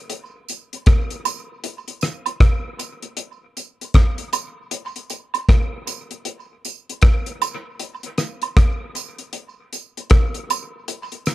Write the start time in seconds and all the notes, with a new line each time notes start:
0.10 closed hi-hat
0.49 closed hi-hat, tambourine
0.73 closed hi-hat
0.86 kick, cross-stick, closed hi-hat
1.10 closed hi-hat
1.25 closed hi-hat, tambourine, high woodblock
1.64 closed hi-hat
1.88 closed hi-hat
2.01 cross-stick, closed hi-hat, tambourine
2.26 closed hi-hat, high woodblock
2.40 kick, cross-stick, closed hi-hat
2.79 closed hi-hat, tambourine
3.02 closed hi-hat
3.17 closed hi-hat
3.57 closed hi-hat, tambourine
3.81 closed hi-hat
3.94 kick, cross-stick, closed hi-hat
4.18 closed hi-hat
4.33 closed hi-hat, tambourine, high woodblock
4.71 closed hi-hat
4.96 closed hi-hat
5.10 closed hi-hat, tambourine
5.34 closed hi-hat, high woodblock
5.49 kick, cross-stick, closed hi-hat
5.87 closed hi-hat, tambourine
6.11 closed hi-hat
6.25 closed hi-hat
6.65 closed hi-hat, tambourine
6.89 closed hi-hat
7.02 kick, cross-stick, closed hi-hat
7.26 closed hi-hat
7.42 closed hi-hat, tambourine, high woodblock
7.79 closed hi-hat
8.03 closed hi-hat
8.18 cross-stick, closed hi-hat, tambourine
8.42 closed hi-hat, high woodblock
8.57 kick, cross-stick, closed hi-hat
8.95 closed hi-hat, tambourine
9.18 closed hi-hat
9.33 closed hi-hat
9.73 closed hi-hat, tambourine
9.97 closed hi-hat
10.10 kick, cross-stick, closed hi-hat
10.34 closed hi-hat
10.50 closed hi-hat, tambourine, high woodblock
10.88 closed hi-hat
11.12 closed hi-hat
11.26 cross-stick, closed hi-hat, tambourine